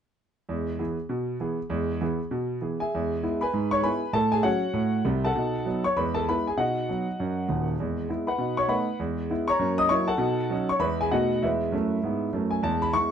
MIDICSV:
0, 0, Header, 1, 2, 480
1, 0, Start_track
1, 0, Key_signature, 4, "major"
1, 0, Tempo, 303644
1, 778, Time_signature, 4, 2, 24, 8
1, 20731, End_track
2, 0, Start_track
2, 0, Title_t, "Grand piano"
2, 0, Program_c, 0, 0
2, 769, Note_on_c, 0, 40, 59
2, 798, Note_on_c, 0, 56, 36
2, 1027, Control_c, 0, 64, 127
2, 1057, Note_off_c, 0, 56, 0
2, 1182, Note_off_c, 0, 40, 0
2, 1249, Note_on_c, 0, 52, 42
2, 1250, Note_on_c, 0, 68, 41
2, 1252, Note_on_c, 0, 59, 35
2, 1284, Control_c, 0, 64, 0
2, 1516, Note_off_c, 0, 52, 0
2, 1517, Note_off_c, 0, 68, 0
2, 1518, Note_off_c, 0, 59, 0
2, 1728, Note_on_c, 0, 47, 61
2, 2142, Note_off_c, 0, 47, 0
2, 2214, Note_on_c, 0, 52, 38
2, 2223, Note_on_c, 0, 68, 43
2, 2228, Note_on_c, 0, 59, 42
2, 2481, Note_off_c, 0, 52, 0
2, 2487, Note_off_c, 0, 68, 0
2, 2491, Note_off_c, 0, 59, 0
2, 2682, Note_on_c, 0, 40, 71
2, 2715, Note_on_c, 0, 56, 53
2, 2968, Control_c, 0, 64, 127
2, 2976, Note_off_c, 0, 56, 0
2, 3099, Note_off_c, 0, 40, 0
2, 3177, Note_on_c, 0, 52, 52
2, 3188, Note_on_c, 0, 59, 46
2, 3191, Note_on_c, 0, 68, 45
2, 3198, Control_c, 0, 64, 0
2, 3443, Note_off_c, 0, 52, 0
2, 3451, Note_off_c, 0, 59, 0
2, 3453, Note_off_c, 0, 68, 0
2, 3652, Note_on_c, 0, 47, 61
2, 4066, Note_off_c, 0, 47, 0
2, 4131, Note_on_c, 0, 52, 33
2, 4140, Note_on_c, 0, 68, 39
2, 4142, Note_on_c, 0, 59, 31
2, 4399, Note_off_c, 0, 52, 0
2, 4406, Note_off_c, 0, 68, 0
2, 4407, Note_off_c, 0, 59, 0
2, 4430, Note_on_c, 0, 80, 62
2, 4450, Note_on_c, 0, 76, 37
2, 4458, Note_on_c, 0, 68, 41
2, 4655, Note_on_c, 0, 40, 61
2, 4685, Note_on_c, 0, 56, 39
2, 4891, Control_c, 0, 64, 127
2, 4932, Note_off_c, 0, 56, 0
2, 5051, Note_off_c, 0, 40, 0
2, 5104, Note_on_c, 0, 56, 33
2, 5113, Note_on_c, 0, 64, 42
2, 5118, Note_on_c, 0, 59, 39
2, 5120, Control_c, 0, 64, 0
2, 5342, Note_off_c, 0, 76, 0
2, 5346, Note_off_c, 0, 68, 0
2, 5369, Note_off_c, 0, 56, 0
2, 5375, Note_off_c, 0, 64, 0
2, 5379, Note_off_c, 0, 59, 0
2, 5388, Note_off_c, 0, 80, 0
2, 5391, Note_on_c, 0, 83, 67
2, 5412, Note_on_c, 0, 80, 60
2, 5420, Note_on_c, 0, 71, 64
2, 5587, Note_on_c, 0, 44, 66
2, 5846, Control_c, 0, 64, 127
2, 5853, Note_off_c, 0, 80, 0
2, 5858, Note_off_c, 0, 71, 0
2, 5870, Note_on_c, 0, 85, 83
2, 5876, Note_off_c, 0, 83, 0
2, 5888, Note_on_c, 0, 73, 64
2, 5995, Note_off_c, 0, 44, 0
2, 6042, Note_on_c, 0, 56, 34
2, 6051, Note_on_c, 0, 64, 40
2, 6057, Note_on_c, 0, 59, 34
2, 6058, Note_off_c, 0, 73, 0
2, 6061, Note_off_c, 0, 85, 0
2, 6062, Note_on_c, 0, 83, 79
2, 6064, Note_on_c, 0, 71, 56
2, 6065, Note_on_c, 0, 80, 55
2, 6084, Control_c, 0, 64, 0
2, 6313, Note_off_c, 0, 56, 0
2, 6320, Note_off_c, 0, 64, 0
2, 6324, Note_off_c, 0, 59, 0
2, 6512, Note_off_c, 0, 71, 0
2, 6512, Note_off_c, 0, 80, 0
2, 6530, Note_on_c, 0, 45, 66
2, 6536, Note_on_c, 0, 81, 84
2, 6545, Note_off_c, 0, 83, 0
2, 6562, Note_on_c, 0, 69, 66
2, 6807, Control_c, 0, 64, 127
2, 6825, Note_on_c, 0, 80, 78
2, 6828, Note_off_c, 0, 69, 0
2, 6836, Note_off_c, 0, 81, 0
2, 6856, Note_on_c, 0, 68, 66
2, 6946, Note_off_c, 0, 45, 0
2, 7003, Note_on_c, 0, 54, 37
2, 7004, Note_on_c, 0, 78, 76
2, 7011, Note_on_c, 0, 61, 42
2, 7019, Note_off_c, 0, 80, 0
2, 7022, Note_off_c, 0, 68, 0
2, 7023, Note_on_c, 0, 73, 60
2, 7026, Note_on_c, 0, 66, 50
2, 7045, Control_c, 0, 64, 0
2, 7274, Note_off_c, 0, 54, 0
2, 7280, Note_off_c, 0, 61, 0
2, 7485, Note_on_c, 0, 45, 65
2, 7902, Note_off_c, 0, 45, 0
2, 7922, Note_off_c, 0, 73, 0
2, 7924, Note_off_c, 0, 66, 0
2, 7976, Note_off_c, 0, 78, 0
2, 7980, Note_on_c, 0, 36, 68
2, 7984, Note_on_c, 0, 48, 57
2, 8291, Note_on_c, 0, 81, 67
2, 8308, Note_on_c, 0, 69, 57
2, 8312, Note_on_c, 0, 78, 52
2, 8367, Note_off_c, 0, 36, 0
2, 8369, Note_off_c, 0, 48, 0
2, 8465, Note_on_c, 0, 47, 57
2, 8508, Note_on_c, 0, 63, 43
2, 8733, Control_c, 0, 64, 127
2, 8761, Note_off_c, 0, 63, 0
2, 8874, Note_off_c, 0, 47, 0
2, 8936, Note_on_c, 0, 54, 42
2, 8947, Note_on_c, 0, 63, 47
2, 8956, Note_on_c, 0, 59, 46
2, 8963, Control_c, 0, 64, 0
2, 9192, Note_off_c, 0, 69, 0
2, 9194, Note_off_c, 0, 78, 0
2, 9203, Note_off_c, 0, 54, 0
2, 9211, Note_off_c, 0, 63, 0
2, 9218, Note_off_c, 0, 59, 0
2, 9238, Note_on_c, 0, 85, 76
2, 9246, Note_off_c, 0, 81, 0
2, 9255, Note_on_c, 0, 73, 60
2, 9422, Note_off_c, 0, 73, 0
2, 9426, Note_off_c, 0, 85, 0
2, 9427, Note_on_c, 0, 40, 69
2, 9433, Note_on_c, 0, 83, 70
2, 9448, Note_on_c, 0, 71, 42
2, 9459, Note_on_c, 0, 56, 38
2, 9675, Control_c, 0, 64, 127
2, 9711, Note_off_c, 0, 71, 0
2, 9714, Note_off_c, 0, 56, 0
2, 9714, Note_on_c, 0, 81, 71
2, 9724, Note_off_c, 0, 83, 0
2, 9734, Note_on_c, 0, 69, 55
2, 9835, Note_off_c, 0, 40, 0
2, 9901, Note_off_c, 0, 69, 0
2, 9903, Note_off_c, 0, 81, 0
2, 9932, Control_c, 0, 64, 0
2, 9938, Note_on_c, 0, 83, 74
2, 9940, Note_on_c, 0, 56, 37
2, 9941, Note_on_c, 0, 59, 37
2, 9947, Note_on_c, 0, 64, 39
2, 9958, Note_on_c, 0, 71, 50
2, 10195, Note_off_c, 0, 56, 0
2, 10196, Note_off_c, 0, 59, 0
2, 10200, Note_off_c, 0, 64, 0
2, 10208, Note_off_c, 0, 71, 0
2, 10216, Note_off_c, 0, 83, 0
2, 10234, Note_on_c, 0, 80, 58
2, 10262, Note_on_c, 0, 68, 45
2, 10394, Note_on_c, 0, 47, 56
2, 10395, Note_on_c, 0, 78, 65
2, 10403, Note_off_c, 0, 80, 0
2, 10407, Note_off_c, 0, 68, 0
2, 10423, Note_on_c, 0, 63, 40
2, 10423, Note_on_c, 0, 75, 44
2, 10426, Note_on_c, 0, 66, 46
2, 10642, Control_c, 0, 64, 127
2, 10677, Note_off_c, 0, 63, 0
2, 10798, Note_off_c, 0, 47, 0
2, 10888, Control_c, 0, 64, 0
2, 10895, Note_on_c, 0, 54, 37
2, 10896, Note_on_c, 0, 59, 31
2, 10902, Note_on_c, 0, 63, 42
2, 11151, Note_off_c, 0, 54, 0
2, 11151, Note_off_c, 0, 59, 0
2, 11156, Note_off_c, 0, 63, 0
2, 11376, Note_on_c, 0, 42, 52
2, 11771, Note_off_c, 0, 42, 0
2, 11825, Note_on_c, 0, 39, 46
2, 11832, Note_on_c, 0, 27, 55
2, 12074, Note_off_c, 0, 75, 0
2, 12076, Note_off_c, 0, 66, 0
2, 12123, Note_off_c, 0, 78, 0
2, 12209, Note_off_c, 0, 39, 0
2, 12213, Note_off_c, 0, 27, 0
2, 12326, Note_on_c, 0, 40, 58
2, 12350, Note_on_c, 0, 56, 38
2, 12571, Control_c, 0, 64, 127
2, 12601, Note_off_c, 0, 56, 0
2, 12725, Note_off_c, 0, 40, 0
2, 12790, Note_on_c, 0, 56, 36
2, 12798, Note_on_c, 0, 59, 32
2, 12799, Control_c, 0, 64, 0
2, 12809, Note_on_c, 0, 64, 42
2, 13052, Note_off_c, 0, 56, 0
2, 13058, Note_off_c, 0, 59, 0
2, 13066, Note_off_c, 0, 64, 0
2, 13076, Note_on_c, 0, 83, 55
2, 13083, Note_on_c, 0, 71, 48
2, 13094, Note_on_c, 0, 78, 53
2, 13251, Note_on_c, 0, 47, 52
2, 13286, Note_on_c, 0, 63, 37
2, 13515, Control_c, 0, 64, 127
2, 13527, Note_off_c, 0, 71, 0
2, 13533, Note_off_c, 0, 78, 0
2, 13544, Note_off_c, 0, 63, 0
2, 13553, Note_on_c, 0, 85, 77
2, 13557, Note_off_c, 0, 83, 0
2, 13570, Note_on_c, 0, 73, 59
2, 13664, Note_off_c, 0, 47, 0
2, 13719, Note_on_c, 0, 57, 30
2, 13723, Note_on_c, 0, 59, 35
2, 13731, Note_on_c, 0, 83, 67
2, 13734, Note_on_c, 0, 63, 42
2, 13738, Note_off_c, 0, 73, 0
2, 13739, Note_on_c, 0, 78, 51
2, 13742, Note_off_c, 0, 85, 0
2, 13751, Note_on_c, 0, 71, 47
2, 13767, Control_c, 0, 64, 0
2, 13990, Note_off_c, 0, 57, 0
2, 13992, Note_off_c, 0, 59, 0
2, 14001, Note_off_c, 0, 63, 0
2, 14187, Note_off_c, 0, 78, 0
2, 14194, Note_off_c, 0, 71, 0
2, 14217, Note_off_c, 0, 83, 0
2, 14218, Note_on_c, 0, 40, 61
2, 14238, Note_on_c, 0, 56, 38
2, 14475, Control_c, 0, 64, 127
2, 14498, Note_off_c, 0, 56, 0
2, 14628, Note_off_c, 0, 40, 0
2, 14698, Note_on_c, 0, 56, 39
2, 14713, Note_on_c, 0, 59, 47
2, 14715, Note_on_c, 0, 64, 46
2, 14726, Control_c, 0, 64, 0
2, 14963, Note_off_c, 0, 56, 0
2, 14974, Note_off_c, 0, 59, 0
2, 14976, Note_off_c, 0, 64, 0
2, 14980, Note_on_c, 0, 85, 88
2, 15007, Note_on_c, 0, 73, 66
2, 15010, Note_on_c, 0, 82, 67
2, 15163, Note_on_c, 0, 42, 65
2, 15191, Note_on_c, 0, 58, 46
2, 15434, Control_c, 0, 64, 127
2, 15448, Note_off_c, 0, 73, 0
2, 15450, Note_off_c, 0, 82, 0
2, 15452, Note_off_c, 0, 58, 0
2, 15462, Note_on_c, 0, 87, 100
2, 15468, Note_off_c, 0, 85, 0
2, 15478, Note_on_c, 0, 75, 72
2, 15579, Note_off_c, 0, 42, 0
2, 15636, Note_on_c, 0, 85, 85
2, 15637, Note_on_c, 0, 58, 50
2, 15640, Note_on_c, 0, 54, 47
2, 15650, Note_off_c, 0, 75, 0
2, 15655, Note_off_c, 0, 87, 0
2, 15655, Note_on_c, 0, 73, 62
2, 15656, Note_on_c, 0, 64, 51
2, 15685, Control_c, 0, 64, 0
2, 15908, Note_off_c, 0, 58, 0
2, 15910, Note_off_c, 0, 54, 0
2, 15921, Note_off_c, 0, 64, 0
2, 15927, Note_on_c, 0, 81, 79
2, 15932, Note_off_c, 0, 73, 0
2, 15937, Note_on_c, 0, 78, 64
2, 15943, Note_off_c, 0, 85, 0
2, 15948, Note_on_c, 0, 69, 56
2, 16091, Note_on_c, 0, 47, 73
2, 16124, Note_on_c, 0, 63, 52
2, 16392, Control_c, 0, 64, 127
2, 16393, Note_off_c, 0, 63, 0
2, 16520, Note_off_c, 0, 47, 0
2, 16594, Note_on_c, 0, 54, 38
2, 16609, Note_on_c, 0, 63, 53
2, 16614, Note_on_c, 0, 61, 45
2, 16645, Control_c, 0, 64, 0
2, 16843, Note_off_c, 0, 78, 0
2, 16848, Note_off_c, 0, 69, 0
2, 16866, Note_off_c, 0, 54, 0
2, 16876, Note_off_c, 0, 63, 0
2, 16880, Note_off_c, 0, 61, 0
2, 16901, Note_off_c, 0, 81, 0
2, 16904, Note_on_c, 0, 85, 82
2, 16936, Note_on_c, 0, 73, 57
2, 17061, Note_on_c, 0, 40, 72
2, 17068, Note_on_c, 0, 56, 39
2, 17070, Note_on_c, 0, 83, 84
2, 17071, Note_on_c, 0, 59, 36
2, 17074, Note_on_c, 0, 64, 33
2, 17083, Note_on_c, 0, 71, 57
2, 17091, Note_off_c, 0, 56, 0
2, 17096, Note_off_c, 0, 85, 0
2, 17099, Note_off_c, 0, 73, 0
2, 17100, Note_on_c, 0, 56, 45
2, 17343, Note_off_c, 0, 59, 0
2, 17345, Note_off_c, 0, 64, 0
2, 17364, Note_off_c, 0, 56, 0
2, 17365, Note_off_c, 0, 71, 0
2, 17367, Control_c, 0, 64, 127
2, 17379, Note_off_c, 0, 83, 0
2, 17399, Note_on_c, 0, 80, 79
2, 17413, Note_on_c, 0, 68, 55
2, 17486, Note_off_c, 0, 40, 0
2, 17570, Note_on_c, 0, 78, 64
2, 17573, Note_on_c, 0, 47, 62
2, 17574, Note_on_c, 0, 57, 37
2, 17577, Note_off_c, 0, 68, 0
2, 17582, Note_on_c, 0, 59, 41
2, 17583, Note_off_c, 0, 80, 0
2, 17592, Note_on_c, 0, 63, 42
2, 17595, Control_c, 0, 64, 0
2, 17597, Note_on_c, 0, 75, 55
2, 17599, Note_on_c, 0, 66, 52
2, 17839, Note_off_c, 0, 57, 0
2, 17845, Note_off_c, 0, 59, 0
2, 17845, Control_c, 0, 64, 127
2, 17863, Note_off_c, 0, 63, 0
2, 17984, Note_off_c, 0, 47, 0
2, 18035, Note_off_c, 0, 75, 0
2, 18036, Note_off_c, 0, 66, 0
2, 18055, Note_off_c, 0, 78, 0
2, 18061, Note_on_c, 0, 76, 58
2, 18065, Note_on_c, 0, 40, 56
2, 18076, Control_c, 0, 64, 0
2, 18087, Note_on_c, 0, 71, 48
2, 18088, Note_on_c, 0, 64, 44
2, 18092, Note_on_c, 0, 56, 53
2, 18318, Control_c, 0, 64, 127
2, 18447, Note_off_c, 0, 40, 0
2, 18463, Note_off_c, 0, 56, 0
2, 18526, Note_on_c, 0, 42, 45
2, 18549, Note_on_c, 0, 57, 54
2, 18558, Control_c, 0, 64, 0
2, 18915, Note_off_c, 0, 42, 0
2, 18929, Note_off_c, 0, 57, 0
2, 19022, Note_on_c, 0, 44, 55
2, 19050, Note_on_c, 0, 59, 47
2, 19404, Note_off_c, 0, 44, 0
2, 19421, Note_off_c, 0, 59, 0
2, 19490, Note_on_c, 0, 42, 51
2, 19518, Note_on_c, 0, 57, 46
2, 19742, Note_off_c, 0, 64, 0
2, 19742, Note_off_c, 0, 71, 0
2, 19768, Note_on_c, 0, 80, 62
2, 19792, Note_off_c, 0, 76, 0
2, 19877, Note_off_c, 0, 42, 0
2, 19893, Note_off_c, 0, 57, 0
2, 19958, Note_on_c, 0, 40, 73
2, 19965, Note_off_c, 0, 80, 0
2, 19973, Note_on_c, 0, 81, 78
2, 19989, Note_on_c, 0, 56, 42
2, 20239, Control_c, 0, 64, 127
2, 20249, Note_off_c, 0, 56, 0
2, 20266, Note_on_c, 0, 83, 84
2, 20268, Note_off_c, 0, 81, 0
2, 20373, Note_off_c, 0, 40, 0
2, 20447, Note_on_c, 0, 85, 95
2, 20448, Note_on_c, 0, 59, 37
2, 20449, Note_on_c, 0, 56, 38
2, 20454, Note_off_c, 0, 83, 0
2, 20456, Note_on_c, 0, 64, 39
2, 20472, Control_c, 0, 64, 0
2, 20714, Note_off_c, 0, 56, 0
2, 20714, Note_off_c, 0, 59, 0
2, 20719, Note_off_c, 0, 64, 0
2, 20731, Note_off_c, 0, 85, 0
2, 20731, End_track
0, 0, End_of_file